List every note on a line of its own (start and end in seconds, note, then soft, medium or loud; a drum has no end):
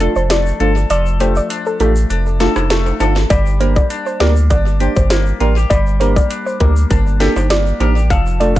0.00 0.89 F3 medium
0.00 0.29 A3 medium
0.00 0.13 A3 medium
0.00 1.50 D4 medium
0.00 0.13 D4 medium
0.00 0.13 F4 medium
0.00 0.59 A4 medium
0.00 0.13 A4 medium
0.00 closed hi-hat medium
0.00 shaker medium
0.16 0.53 F1 medium
0.16 0.26 C5 medium
0.16 shaker medium
0.30 1.19 A3 medium
0.30 0.74 D5 medium
0.30 snare loud
0.30 closed hi-hat medium
0.30 shaker medium
0.46 shaker soft
0.60 0.85 G1 loud
0.60 0.73 A3 medium
0.60 0.73 D4 medium
0.60 0.73 F4 medium
0.60 0.90 A4 medium
0.60 0.73 A4 medium
0.60 closed hi-hat soft
0.77 shaker medium
0.90 1.40 F1 loud
0.90 3.30 F3 medium
0.90 2.39 A4 medium
0.90 1.02 D5 loud
0.90 closed hi-hat medium
0.90 shaker medium
1.06 shaker medium
1.20 1.33 A3 medium
1.20 1.79 A3 medium
1.20 1.33 D4 medium
1.20 1.33 F4 medium
1.20 1.33 G4 medium
1.20 1.32 C5 medium
1.20 closed hi-hat medium
1.20 shaker soft
1.36 1.47 D5 medium
1.36 shaker medium
1.50 2.10 D4 medium
1.50 closed hi-hat medium
1.50 shaker medium
1.66 1.76 A4 medium
1.66 shaker soft
1.80 2.05 A1 medium
1.80 1.93 A3 medium
1.80 2.69 A3 medium
1.80 1.93 D4 medium
1.80 1.93 F4 medium
1.80 1.93 G4 medium
1.80 1.92 A4 medium
1.80 closed hi-hat soft
1.80 shaker medium
1.96 shaker medium
2.10 2.48 F1 loud
2.10 3.90 D4 medium
2.10 closed hi-hat medium
2.10 shaker medium
2.26 shaker soft
2.40 2.53 A3 medium
2.40 2.53 D4 medium
2.40 2.53 F4 medium
2.40 2.99 A4 medium
2.40 2.52 A4 medium
2.40 2.53 A4 medium
2.40 snare medium
2.40 closed hi-hat medium
2.40 shaker medium
2.56 2.93 F1 medium
2.56 cross-stick medium
2.56 high timbale medium
2.56 shaker medium
2.70 3.37 A3 medium
2.70 3.14 A4 medium
2.70 snare loud
2.70 closed hi-hat medium
2.70 shaker medium
2.86 high timbale medium
2.86 shaker medium
3.00 3.25 G1 medium
3.00 3.13 A3 medium
3.00 3.13 D4 medium
3.00 3.13 F4 medium
3.00 3.30 A4 medium
3.00 3.13 A4 medium
3.00 closed hi-hat soft
3.00 high timbale medium
3.00 shaker medium
3.16 snare medium
3.16 shaker medium
3.30 3.80 G1 loud
3.30 5.69 G3 medium
3.30 4.79 G4 medium
3.30 3.41 D5 loud
3.30 kick loud
3.30 closed hi-hat medium
3.30 shaker medium
3.46 shaker medium
3.60 4.19 A#3 medium
3.60 3.73 A#3 medium
3.60 3.73 D4 medium
3.60 3.73 G4 medium
3.60 3.73 A#4 medium
3.60 3.72 C5 medium
3.60 closed hi-hat medium
3.60 shaker soft
3.76 3.86 D5 medium
3.76 kick loud
3.76 shaker medium
3.90 4.50 D4 medium
3.90 closed hi-hat medium
3.90 shaker medium
4.06 4.16 C5 medium
4.06 shaker soft
4.20 4.52 D2 medium
4.20 4.33 A#3 medium
4.20 5.09 A#3 medium
4.20 4.33 D4 medium
4.20 4.33 G4 medium
4.20 4.33 A#4 medium
4.20 4.31 D5 medium
4.20 snare loud
4.20 closed hi-hat soft
4.36 shaker medium
4.50 4.88 G1 loud
4.50 6.30 D4 medium
4.50 4.62 D5 medium
4.50 kick loud
4.50 closed hi-hat medium
4.50 shaker medium
4.67 shaker soft
4.80 4.93 A#3 medium
4.80 4.93 D4 medium
4.80 5.40 G4 medium
4.80 4.93 G4 medium
4.80 4.93 C5 medium
4.80 closed hi-hat medium
4.80 shaker medium
4.96 5.33 G1 medium
4.96 5.06 C5 medium
4.96 kick medium
4.96 shaker medium
5.10 5.99 A#3 medium
5.10 5.53 C5 medium
5.10 snare loud
5.10 closed hi-hat medium
5.10 shaker medium
5.26 shaker medium
5.40 5.65 A1 loud
5.40 5.53 A#3 medium
5.40 5.53 D4 medium
5.40 5.56 F4 medium
5.40 5.53 G4 medium
5.40 5.53 A#4 medium
5.40 closed hi-hat soft
5.56 5.70 G4 medium
5.56 shaker medium
5.70 6.20 G1 loud
5.70 8.10 G3 medium
5.70 7.19 G4 medium
5.70 5.81 D5 loud
5.70 kick loud
5.70 closed hi-hat medium
5.70 shaker medium
5.87 shaker medium
6.00 6.13 A#3 medium
6.00 6.59 A#3 medium
6.00 6.13 D4 medium
6.00 6.13 G4 medium
6.00 6.13 A#4 medium
6.00 6.11 C5 medium
6.00 closed hi-hat medium
6.00 shaker soft
6.16 6.26 D5 medium
6.16 kick loud
6.16 shaker medium
6.30 6.90 D4 medium
6.30 closed hi-hat medium
6.30 shaker medium
6.46 6.56 C5 medium
6.46 shaker soft
6.60 6.85 D2 medium
6.60 7.49 A#3 medium
6.60 6.73 A#3 medium
6.60 6.73 D4 medium
6.60 6.73 G4 medium
6.60 6.73 A#4 medium
6.60 6.72 A#4 medium
6.60 kick medium
6.60 closed hi-hat soft
6.76 shaker medium
6.90 7.29 G1 loud
6.90 8.60 D4 medium
6.90 7.02 A#4 medium
6.90 kick loud
6.90 closed hi-hat medium
6.90 shaker medium
7.07 shaker soft
7.20 7.33 A#3 medium
7.20 7.33 D4 medium
7.20 7.79 G4 medium
7.20 7.33 G4 medium
7.20 7.33 A4 medium
7.20 snare medium
7.20 closed hi-hat medium
7.20 shaker medium
7.36 7.73 G1 medium
7.36 7.46 C5 medium
7.36 high timbale medium
7.36 shaker medium
7.50 8.17 A#3 medium
7.50 7.94 D5 medium
7.50 snare loud
7.50 closed hi-hat medium
7.50 shaker medium
7.67 shaker medium
7.80 8.12 A1 loud
7.80 7.93 A#3 medium
7.80 7.93 D4 medium
7.80 8.10 G4 medium
7.80 7.93 G4 medium
7.80 7.93 A#4 medium
7.80 closed hi-hat soft
7.80 high timbale medium
7.97 shaker medium
8.10 8.60 F1 loud
8.10 8.60 F3 medium
8.10 8.60 A4 medium
8.10 8.22 F5 loud
8.10 kick loud
8.10 closed hi-hat medium
8.10 shaker medium
8.26 shaker medium
8.40 8.60 A3 medium
8.40 8.53 A3 medium
8.40 8.53 D4 medium
8.40 8.53 F4 medium
8.40 8.53 A4 medium
8.40 8.51 D5 medium
8.40 closed hi-hat medium
8.40 shaker soft
8.56 8.60 F5 medium
8.56 kick loud
8.56 shaker medium